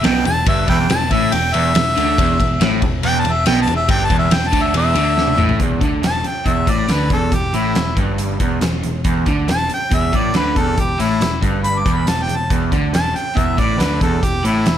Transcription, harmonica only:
0, 0, Header, 1, 2, 480
1, 0, Start_track
1, 0, Key_signature, 1, "minor"
1, 0, Tempo, 427960
1, 524, Time_signature, 4, 2, 24, 8
1, 6765, Tempo, 431344
1, 16499, End_track
2, 0, Start_track
2, 0, Title_t, "Harmonica"
2, 0, Program_c, 0, 22
2, 52, Note_on_c, 0, 79, 88
2, 281, Note_off_c, 0, 79, 0
2, 294, Note_on_c, 0, 81, 102
2, 522, Note_off_c, 0, 81, 0
2, 542, Note_on_c, 0, 76, 96
2, 766, Note_off_c, 0, 76, 0
2, 780, Note_on_c, 0, 71, 68
2, 780, Note_on_c, 0, 76, 68
2, 780, Note_on_c, 0, 79, 97
2, 857, Note_off_c, 0, 71, 0
2, 880, Note_off_c, 0, 76, 0
2, 1005, Note_off_c, 0, 79, 0
2, 1018, Note_on_c, 0, 81, 100
2, 1256, Note_on_c, 0, 76, 99
2, 1273, Note_off_c, 0, 81, 0
2, 1495, Note_on_c, 0, 79, 102
2, 1512, Note_off_c, 0, 76, 0
2, 1726, Note_on_c, 0, 76, 113
2, 1743, Note_off_c, 0, 79, 0
2, 3118, Note_off_c, 0, 76, 0
2, 3411, Note_on_c, 0, 79, 118
2, 3580, Note_on_c, 0, 81, 99
2, 3596, Note_off_c, 0, 79, 0
2, 3733, Note_on_c, 0, 76, 100
2, 3750, Note_off_c, 0, 81, 0
2, 3878, Note_off_c, 0, 76, 0
2, 3885, Note_on_c, 0, 79, 98
2, 4037, Note_off_c, 0, 79, 0
2, 4060, Note_on_c, 0, 81, 83
2, 4205, Note_off_c, 0, 81, 0
2, 4220, Note_on_c, 0, 76, 100
2, 4364, Note_off_c, 0, 76, 0
2, 4375, Note_on_c, 0, 79, 94
2, 4537, Note_on_c, 0, 81, 100
2, 4554, Note_off_c, 0, 79, 0
2, 4683, Note_off_c, 0, 81, 0
2, 4696, Note_on_c, 0, 76, 95
2, 4871, Note_on_c, 0, 79, 95
2, 4888, Note_off_c, 0, 76, 0
2, 5023, Note_on_c, 0, 81, 108
2, 5040, Note_off_c, 0, 79, 0
2, 5195, Note_on_c, 0, 76, 100
2, 5212, Note_off_c, 0, 81, 0
2, 5333, Note_off_c, 0, 76, 0
2, 5354, Note_on_c, 0, 76, 109
2, 6271, Note_off_c, 0, 76, 0
2, 6789, Note_on_c, 0, 81, 96
2, 7032, Note_on_c, 0, 79, 78
2, 7048, Note_off_c, 0, 81, 0
2, 7254, Note_on_c, 0, 76, 85
2, 7271, Note_off_c, 0, 79, 0
2, 7510, Note_on_c, 0, 74, 75
2, 7527, Note_off_c, 0, 76, 0
2, 7753, Note_on_c, 0, 71, 78
2, 7769, Note_off_c, 0, 74, 0
2, 7971, Note_off_c, 0, 71, 0
2, 7986, Note_on_c, 0, 69, 84
2, 8221, Note_on_c, 0, 67, 80
2, 8238, Note_off_c, 0, 69, 0
2, 8465, Note_on_c, 0, 64, 87
2, 8482, Note_off_c, 0, 67, 0
2, 8920, Note_off_c, 0, 64, 0
2, 10636, Note_on_c, 0, 81, 93
2, 10854, Note_off_c, 0, 81, 0
2, 10891, Note_on_c, 0, 79, 79
2, 11120, Note_on_c, 0, 76, 84
2, 11136, Note_off_c, 0, 79, 0
2, 11360, Note_on_c, 0, 74, 82
2, 11377, Note_off_c, 0, 76, 0
2, 11576, Note_off_c, 0, 74, 0
2, 11586, Note_on_c, 0, 71, 87
2, 11820, Note_on_c, 0, 69, 88
2, 11837, Note_off_c, 0, 71, 0
2, 12072, Note_on_c, 0, 67, 84
2, 12089, Note_off_c, 0, 69, 0
2, 12298, Note_on_c, 0, 64, 100
2, 12315, Note_off_c, 0, 67, 0
2, 12758, Note_off_c, 0, 64, 0
2, 13012, Note_on_c, 0, 83, 94
2, 13170, Note_on_c, 0, 86, 79
2, 13186, Note_off_c, 0, 83, 0
2, 13339, Note_on_c, 0, 83, 79
2, 13356, Note_off_c, 0, 86, 0
2, 13502, Note_on_c, 0, 81, 86
2, 13518, Note_off_c, 0, 83, 0
2, 13664, Note_on_c, 0, 79, 85
2, 13681, Note_off_c, 0, 81, 0
2, 13812, Note_on_c, 0, 81, 79
2, 13828, Note_off_c, 0, 79, 0
2, 13965, Note_off_c, 0, 81, 0
2, 14461, Note_on_c, 0, 81, 93
2, 14704, Note_on_c, 0, 79, 80
2, 14720, Note_off_c, 0, 81, 0
2, 14936, Note_on_c, 0, 76, 78
2, 14953, Note_off_c, 0, 79, 0
2, 15178, Note_on_c, 0, 74, 78
2, 15195, Note_off_c, 0, 76, 0
2, 15419, Note_on_c, 0, 71, 82
2, 15436, Note_off_c, 0, 74, 0
2, 15646, Note_off_c, 0, 71, 0
2, 15655, Note_on_c, 0, 69, 77
2, 15896, Note_on_c, 0, 67, 83
2, 15913, Note_off_c, 0, 69, 0
2, 16139, Note_on_c, 0, 64, 82
2, 16156, Note_off_c, 0, 67, 0
2, 16499, Note_off_c, 0, 64, 0
2, 16499, End_track
0, 0, End_of_file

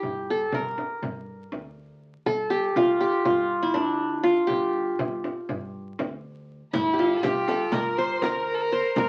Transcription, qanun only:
0, 0, Header, 1, 2, 480
1, 0, Start_track
1, 0, Tempo, 496689
1, 32, Time_signature, 9, 3, 24, 8
1, 8783, End_track
2, 0, Start_track
2, 0, Title_t, "Qanun"
2, 0, Program_c, 0, 107
2, 0, Note_on_c, 0, 64, 73
2, 0, Note_on_c, 0, 67, 77
2, 293, Note_on_c, 0, 69, 75
2, 526, Note_on_c, 0, 70, 70
2, 584, Note_off_c, 0, 69, 0
2, 697, Note_off_c, 0, 64, 0
2, 1033, Note_off_c, 0, 67, 0
2, 1922, Note_off_c, 0, 70, 0
2, 2187, Note_on_c, 0, 69, 95
2, 2418, Note_on_c, 0, 67, 81
2, 2673, Note_on_c, 0, 65, 86
2, 2900, Note_off_c, 0, 67, 0
2, 2904, Note_on_c, 0, 67, 84
2, 3140, Note_off_c, 0, 65, 0
2, 3144, Note_on_c, 0, 65, 76
2, 3331, Note_off_c, 0, 69, 0
2, 3504, Note_on_c, 0, 64, 72
2, 3562, Note_off_c, 0, 65, 0
2, 3614, Note_on_c, 0, 62, 68
2, 4092, Note_on_c, 0, 65, 86
2, 4117, Note_off_c, 0, 67, 0
2, 4150, Note_off_c, 0, 64, 0
2, 4320, Note_on_c, 0, 67, 81
2, 5055, Note_off_c, 0, 62, 0
2, 5394, Note_off_c, 0, 65, 0
2, 6217, Note_off_c, 0, 67, 0
2, 6510, Note_on_c, 0, 64, 86
2, 6701, Note_on_c, 0, 67, 57
2, 6755, Note_on_c, 0, 65, 75
2, 6813, Note_off_c, 0, 64, 0
2, 6983, Note_off_c, 0, 67, 0
2, 6987, Note_on_c, 0, 67, 88
2, 7231, Note_on_c, 0, 69, 74
2, 7460, Note_on_c, 0, 70, 74
2, 7518, Note_off_c, 0, 69, 0
2, 7716, Note_on_c, 0, 72, 84
2, 7955, Note_off_c, 0, 70, 0
2, 7959, Note_on_c, 0, 70, 87
2, 8057, Note_off_c, 0, 65, 0
2, 8200, Note_off_c, 0, 67, 0
2, 8427, Note_off_c, 0, 72, 0
2, 8430, Note_on_c, 0, 72, 84
2, 8675, Note_off_c, 0, 70, 0
2, 8679, Note_on_c, 0, 70, 87
2, 8783, Note_off_c, 0, 70, 0
2, 8783, Note_off_c, 0, 72, 0
2, 8783, End_track
0, 0, End_of_file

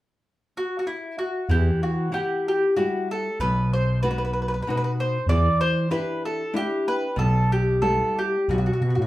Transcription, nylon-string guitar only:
0, 0, Header, 1, 2, 480
1, 0, Start_track
1, 0, Key_signature, 1, "minor"
1, 0, Tempo, 634921
1, 1118, Time_signature, 3, 2, 24, 8
1, 5435, Tempo, 648649
1, 6826, End_track
2, 0, Start_track
2, 0, Title_t, "Nylon-string guitar"
2, 0, Program_c, 0, 24
2, 1129, Note_on_c, 0, 52, 49
2, 1597, Note_off_c, 0, 52, 0
2, 1601, Note_on_c, 0, 64, 32
2, 1604, Note_on_c, 0, 67, 36
2, 1606, Note_on_c, 0, 78, 35
2, 1989, Note_off_c, 0, 64, 0
2, 1992, Note_off_c, 0, 67, 0
2, 1992, Note_off_c, 0, 78, 0
2, 2088, Note_on_c, 0, 55, 46
2, 2090, Note_on_c, 0, 66, 36
2, 2095, Note_on_c, 0, 64, 36
2, 2473, Note_off_c, 0, 55, 0
2, 2473, Note_off_c, 0, 66, 0
2, 2474, Note_off_c, 0, 64, 0
2, 2571, Note_on_c, 0, 47, 57
2, 3032, Note_off_c, 0, 47, 0
2, 3050, Note_on_c, 0, 59, 37
2, 3052, Note_on_c, 0, 63, 35
2, 3057, Note_on_c, 0, 66, 41
2, 3428, Note_off_c, 0, 63, 0
2, 3429, Note_off_c, 0, 59, 0
2, 3430, Note_off_c, 0, 66, 0
2, 3532, Note_on_c, 0, 47, 40
2, 3537, Note_on_c, 0, 66, 42
2, 3542, Note_on_c, 0, 63, 36
2, 3906, Note_off_c, 0, 47, 0
2, 3910, Note_off_c, 0, 66, 0
2, 3912, Note_off_c, 0, 63, 0
2, 4000, Note_on_c, 0, 52, 60
2, 4460, Note_off_c, 0, 52, 0
2, 4464, Note_on_c, 0, 62, 44
2, 4466, Note_on_c, 0, 64, 34
2, 4468, Note_on_c, 0, 67, 52
2, 4850, Note_off_c, 0, 62, 0
2, 4851, Note_off_c, 0, 64, 0
2, 4853, Note_off_c, 0, 67, 0
2, 4940, Note_on_c, 0, 62, 42
2, 4943, Note_on_c, 0, 64, 40
2, 4947, Note_on_c, 0, 67, 39
2, 5329, Note_off_c, 0, 62, 0
2, 5331, Note_off_c, 0, 64, 0
2, 5334, Note_off_c, 0, 67, 0
2, 5414, Note_on_c, 0, 47, 56
2, 5886, Note_off_c, 0, 47, 0
2, 5899, Note_on_c, 0, 55, 38
2, 5900, Note_on_c, 0, 59, 36
2, 5904, Note_on_c, 0, 64, 42
2, 6288, Note_off_c, 0, 59, 0
2, 6289, Note_off_c, 0, 55, 0
2, 6290, Note_off_c, 0, 64, 0
2, 6397, Note_on_c, 0, 47, 51
2, 6826, Note_off_c, 0, 47, 0
2, 6826, End_track
0, 0, End_of_file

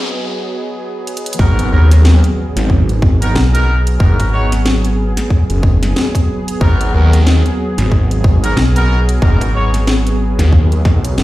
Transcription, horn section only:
0, 0, Header, 1, 2, 480
1, 0, Start_track
1, 0, Key_signature, 5, "minor"
1, 0, Tempo, 652174
1, 1026, Time_signature, 4, 2, 24, 8
1, 8267, End_track
2, 0, Start_track
2, 0, Title_t, "Horn section"
2, 0, Program_c, 0, 61
2, 1024, Note_on_c, 0, 66, 92
2, 1025, Note_on_c, 0, 59, 98
2, 1025, Note_on_c, 0, 63, 88
2, 1026, Note_on_c, 0, 70, 104
2, 1241, Note_off_c, 0, 59, 0
2, 1241, Note_off_c, 0, 66, 0
2, 1242, Note_off_c, 0, 63, 0
2, 1242, Note_off_c, 0, 70, 0
2, 1265, Note_on_c, 0, 59, 77
2, 1265, Note_on_c, 0, 63, 73
2, 1265, Note_on_c, 0, 70, 85
2, 1266, Note_on_c, 0, 66, 73
2, 1392, Note_off_c, 0, 63, 0
2, 1393, Note_off_c, 0, 59, 0
2, 1393, Note_off_c, 0, 66, 0
2, 1393, Note_off_c, 0, 70, 0
2, 2366, Note_on_c, 0, 59, 97
2, 2366, Note_on_c, 0, 63, 87
2, 2366, Note_on_c, 0, 66, 91
2, 2366, Note_on_c, 0, 70, 107
2, 2457, Note_off_c, 0, 59, 0
2, 2457, Note_off_c, 0, 63, 0
2, 2457, Note_off_c, 0, 66, 0
2, 2457, Note_off_c, 0, 70, 0
2, 2604, Note_on_c, 0, 59, 98
2, 2605, Note_on_c, 0, 63, 91
2, 2605, Note_on_c, 0, 66, 85
2, 2605, Note_on_c, 0, 70, 109
2, 2768, Note_off_c, 0, 59, 0
2, 2769, Note_off_c, 0, 63, 0
2, 2769, Note_off_c, 0, 66, 0
2, 2769, Note_off_c, 0, 70, 0
2, 2944, Note_on_c, 0, 70, 95
2, 2945, Note_on_c, 0, 66, 80
2, 2946, Note_on_c, 0, 59, 87
2, 2946, Note_on_c, 0, 63, 82
2, 3161, Note_off_c, 0, 70, 0
2, 3162, Note_off_c, 0, 59, 0
2, 3162, Note_off_c, 0, 63, 0
2, 3162, Note_off_c, 0, 66, 0
2, 3185, Note_on_c, 0, 59, 93
2, 3185, Note_on_c, 0, 66, 82
2, 3186, Note_on_c, 0, 63, 87
2, 3186, Note_on_c, 0, 73, 103
2, 3313, Note_off_c, 0, 59, 0
2, 3313, Note_off_c, 0, 63, 0
2, 3313, Note_off_c, 0, 66, 0
2, 3313, Note_off_c, 0, 73, 0
2, 4866, Note_on_c, 0, 63, 92
2, 4866, Note_on_c, 0, 66, 92
2, 4866, Note_on_c, 0, 70, 105
2, 4867, Note_on_c, 0, 59, 100
2, 5082, Note_off_c, 0, 59, 0
2, 5082, Note_off_c, 0, 63, 0
2, 5082, Note_off_c, 0, 66, 0
2, 5082, Note_off_c, 0, 70, 0
2, 5107, Note_on_c, 0, 59, 82
2, 5108, Note_on_c, 0, 63, 73
2, 5108, Note_on_c, 0, 66, 73
2, 5108, Note_on_c, 0, 70, 84
2, 5234, Note_off_c, 0, 59, 0
2, 5234, Note_off_c, 0, 63, 0
2, 5234, Note_off_c, 0, 66, 0
2, 5234, Note_off_c, 0, 70, 0
2, 6207, Note_on_c, 0, 63, 92
2, 6207, Note_on_c, 0, 66, 90
2, 6208, Note_on_c, 0, 59, 98
2, 6208, Note_on_c, 0, 70, 114
2, 6297, Note_off_c, 0, 63, 0
2, 6297, Note_off_c, 0, 66, 0
2, 6298, Note_off_c, 0, 59, 0
2, 6298, Note_off_c, 0, 70, 0
2, 6447, Note_on_c, 0, 63, 88
2, 6448, Note_on_c, 0, 66, 93
2, 6449, Note_on_c, 0, 59, 99
2, 6449, Note_on_c, 0, 70, 112
2, 6610, Note_off_c, 0, 63, 0
2, 6611, Note_off_c, 0, 59, 0
2, 6611, Note_off_c, 0, 66, 0
2, 6611, Note_off_c, 0, 70, 0
2, 6788, Note_on_c, 0, 63, 81
2, 6789, Note_on_c, 0, 59, 87
2, 6789, Note_on_c, 0, 66, 82
2, 6789, Note_on_c, 0, 70, 100
2, 7003, Note_off_c, 0, 63, 0
2, 7003, Note_off_c, 0, 70, 0
2, 7004, Note_off_c, 0, 59, 0
2, 7004, Note_off_c, 0, 66, 0
2, 7029, Note_on_c, 0, 73, 105
2, 7030, Note_on_c, 0, 59, 89
2, 7030, Note_on_c, 0, 66, 84
2, 7031, Note_on_c, 0, 63, 86
2, 7155, Note_off_c, 0, 59, 0
2, 7155, Note_off_c, 0, 63, 0
2, 7155, Note_off_c, 0, 66, 0
2, 7155, Note_off_c, 0, 73, 0
2, 8267, End_track
0, 0, End_of_file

